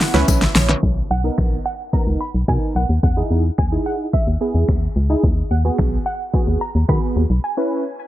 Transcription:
Already playing: C#3 B3 E4 G#5
0.00 F#5, snare, open hi-hat
0.14 C#2 C#4 E4 B4, snare, closed hi-hat
0.28 B1 E5, kick, closed hi-hat, tambourine
0.42 snare, closed hi-hat
0.55 A#1 C#5, snare, open hi-hat
0.69 E4 B4, snare, closed hi-hat
0.83 B1, kick
1.11 B1 F#5
1.24 B3 D#4 A#4
1.38 A#1, finger snap, kick
1.66 F#5
1.93 B3 D#4 A#4 A#5, kick
2.07 C#2
2.21 B5
2.35 B1
2.48 B2 B3 D#4 A#4 G#5, finger snap, kick
2.76 B1 F#5
2.89 D#2
3.03 E2 F#5, kick
3.17 D#4 E4 G#4
3.31 E2
3.58 D#2 G#5, finger snap, kick
3.72 D#4 E4 G#4
3.86 F#5
4.13 E5, kick
4.27 D#2
4.41 B3 E4 G#4
4.55 E2
4.69 D#2, finger snap, kick
4.96 C#2
5.10 D#4 E4 G#4
5.23 D#2, kick, closed hi-hat
5.37 closed hi-hat
5.51 D#2 F#5
5.65 B3 F#4 G#4, closed hi-hat
5.79 B1, finger snap, kick
5.92 closed hi-hat
6.06 F#5
6.20 closed hi-hat
6.33 B3 F#4 G#4, kick, closed hi-hat
6.47 D#2, closed hi-hat
6.61 A#5
6.75 D#2, closed hi-hat
6.88 D#3 B3 F#4 G#4 B5, finger snap, kick
7.02 closed hi-hat
7.16 D#2
7.30 B1, closed hi-hat
7.44 G#5
7.57 C#4 E4 B4

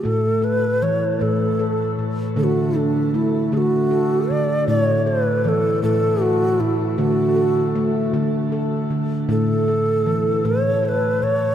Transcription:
0.03 A2 A3 A4
0.42 A4 B4
0.82 E3 C#5
1.19 A2 A3 A4
1.59 A4
1.99 A2
2.36 D3 A3 A4
2.44 F#4
2.75 D4 A4
3.14 A3 E4
3.52 D3 A3 A4
3.57 F#4
3.91 A4
4.30 D3 D5
4.68 A2 A3 C#5
5.06 A4 B4
5.45 E3 A4 B4
5.83 A2 A3 A4
6.22 F#4 A4
6.60 A2 E4
6.98 D3 A3 F#4
7.36 A4
7.75 A3
8.13 D3 A3
8.52 A4
8.91 D3
9.29 A2 A3 A4
9.68 A4
10.06 E3
10.45 A2 A3 C#5
10.83 A4 C#5
10.88 B4
11.22 A2 C#5

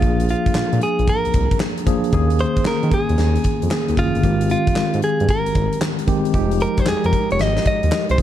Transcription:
Already playing: F3 A#3 D4 F4 G#4
0.02 A#1, kick, closed hi-hat
0.20 closed hi-hat
0.29 F4, closed hi-hat
0.46 kick, closed hi-hat
0.55 A#2, snare, clap
0.73 A#2, closed hi-hat
0.81 G#4, closed hi-hat
0.99 A#1, closed hi-hat
1.07 A#4, kick, closed hi-hat
1.25 C2, closed hi-hat
1.34 C2, kick, closed hi-hat
1.51 kick, closed hi-hat
1.60 snare, clap
1.78 closed hi-hat
1.86 F3 A#3 D4 G#4, kick, closed hi-hat
2.04 closed hi-hat
2.12 D#2 D#3 A#3 C#4 G#4, kick, closed hi-hat
2.30 closed hi-hat
2.39 C5, closed hi-hat
2.56 kick, closed hi-hat
2.65 D#3 A#4, snare, clap
2.83 D#3, closed hi-hat
2.91 G#4, kick, closed hi-hat
3.09 D#2, closed hi-hat
3.18 D#2, snare, closed hi-hat
3.36 closed hi-hat
3.44 kick, closed hi-hat
3.62 F2, closed hi-hat
3.71 snare, clap
3.88 D#2, closed hi-hat
3.97 F#1 D#3 A#3 C#4 F4 G#4, kick, closed hi-hat
4.15 G1, closed hi-hat
4.23 G#1 D#3 G#3 C4 G4, kick, closed hi-hat
4.41 closed hi-hat
4.50 F4, closed hi-hat
4.67 kick, closed hi-hat
4.76 G#2, snare, clap
4.94 G#2, closed hi-hat
5.02 G#4, closed hi-hat
5.20 G2, closed hi-hat
5.28 A#4, kick, closed hi-hat
5.46 G#1, closed hi-hat
5.55 G#1, kick, closed hi-hat
5.73 closed hi-hat
5.81 snare, clap
5.99 closed hi-hat
6.07 D#3 G#3 C4 G4, kick, closed hi-hat
6.25 closed hi-hat
6.34 F1 F3 G#3 D#4 G4, kick, closed hi-hat
6.51 closed hi-hat
6.60 A#4, closed hi-hat
6.77 C5, kick, closed hi-hat
6.86 F2 G#4, snare, clap
7.04 F2 A#4, closed hi-hat
7.13 kick, closed hi-hat
7.31 F1 C#5, closed hi-hat
7.39 G#1 D#5, snare, closed hi-hat
7.57 snare, closed hi-hat
7.65 D#5, kick, closed hi-hat
7.83 D#2, closed hi-hat
7.92 snare, clap
8.09 C2 C5, closed hi-hat
8.18 A#1 F3 A#3 D4, kick, closed hi-hat

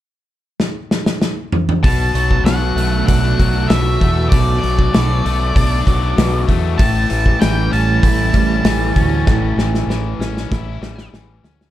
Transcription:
0.60 snare
0.91 snare
1.06 snare
1.22 snare
1.52 mid tom
1.69 mid tom
1.83 B1 B2 F#3 A3 D4 F#4 A5, kick, open hi-hat
2.14 B1 F#3, open hi-hat
2.31 kick
2.44 B1 B2 F#5, snare, open hi-hat
2.75 B1 A3, open hi-hat
3.06 B1 D4 F#5, kick, open hi-hat
3.39 B1 F#3, kick, open hi-hat
3.68 B1 B2 E5, snare, open hi-hat
4.00 E2 A3, kick, open hi-hat
4.29 B1 B2 D5, kick, open hi-hat
4.60 F#3 D5
4.64 B1, open hi-hat
4.79 kick
4.94 B1 B2, snare, open hi-hat
5.25 B1 A3, open hi-hat
5.55 B1 D4, kick, open hi-hat
5.86 B1 F#3, kick, open hi-hat
6.17 B1 B2, snare, open hi-hat
6.48 E2 A3, kick, open hi-hat
6.78 A1 A2 E3 G3 C#4 G4 A5, kick, open hi-hat
7.10 A1 E3, open hi-hat
7.26 kick
7.40 A1 E3 G5, snare, open hi-hat
7.71 A1 C#4 A5, open hi-hat
8.03 A1 E4, kick, open hi-hat
8.33 A1 G3, kick, open hi-hat
8.64 A1 E3, snare, open hi-hat
8.96 D2 C#4, kick, open hi-hat
9.27 A1 A2, kick, snare
9.57 A1 E3, snare
9.75 snare
9.87 A1 E3, snare
10.19 A1 C#4, snare
10.37 snare
10.51 A1 E4, kick, snare
10.82 A1 G3, snare
10.98 snare
11.13 A1 E3, snare
11.43 D2 C#4, snare
11.61 snare

